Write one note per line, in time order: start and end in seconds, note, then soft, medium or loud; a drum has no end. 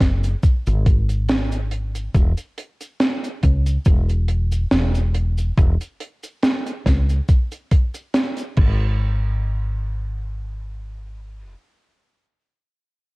0.00 0.34 F#1 medium
0.00 kick medium
0.00 snare medium
0.00 closed hi-hat medium
0.23 closed hi-hat medium
0.23 cabasa medium
0.43 kick loud
0.43 closed hi-hat medium
0.43 cabasa medium
0.67 2.07 G#1 medium
0.67 closed hi-hat medium
0.67 cabasa soft
0.86 kick loud
0.86 closed hi-hat medium
1.09 closed hi-hat soft
1.09 cabasa medium
1.29 snare loud
1.29 closed hi-hat medium
1.29 cabasa medium
1.52 closed hi-hat medium
1.52 cabasa soft
1.71 closed hi-hat medium
1.95 closed hi-hat medium
1.95 cabasa medium
2.15 2.32 E1 loud
2.15 kick loud
2.15 closed hi-hat medium
2.15 cabasa medium
2.37 closed hi-hat medium
2.37 cabasa soft
2.58 closed hi-hat medium
2.81 closed hi-hat medium
2.81 cabasa medium
3.00 snare loud
3.00 closed hi-hat medium
3.00 cabasa medium
3.24 closed hi-hat medium
3.24 cabasa soft
3.43 3.77 C#2 medium
3.43 kick medium
3.43 closed hi-hat medium
3.66 closed hi-hat medium
3.66 cabasa medium
3.85 4.64 E1 loud
3.85 kick loud
3.85 closed hi-hat medium
3.85 cabasa medium
4.09 closed hi-hat medium
4.09 cabasa soft
4.28 closed hi-hat medium
4.52 closed hi-hat medium
4.52 cabasa medium
4.71 5.50 E1 medium
4.71 snare loud
4.71 closed hi-hat medium
4.71 cabasa medium
4.95 closed hi-hat medium
4.95 cabasa soft
5.14 closed hi-hat medium
5.38 closed hi-hat medium
5.38 cabasa medium
5.57 5.75 E1 loud
5.57 kick loud
5.57 closed hi-hat medium
5.57 cabasa medium
5.81 closed hi-hat medium
5.81 cabasa soft
6.00 closed hi-hat loud
6.23 closed hi-hat medium
6.23 cabasa medium
6.43 snare loud
6.43 closed hi-hat medium
6.43 cabasa medium
6.66 closed hi-hat medium
6.66 cabasa soft
6.86 7.19 C#2 medium
6.86 kick medium
6.86 snare medium
6.86 closed hi-hat medium
7.09 closed hi-hat soft
7.09 cabasa medium
7.29 kick loud
7.29 closed hi-hat medium
7.29 cabasa medium
7.52 closed hi-hat medium
7.52 cabasa soft
7.71 kick loud
7.71 closed hi-hat loud
7.94 closed hi-hat medium
7.94 cabasa medium
8.14 snare loud
8.14 closed hi-hat medium
8.14 cabasa medium
8.37 closed hi-hat medium
8.37 cabasa medium
8.57 11.54 G#1 medium
8.57 kick loud
8.57 crash medium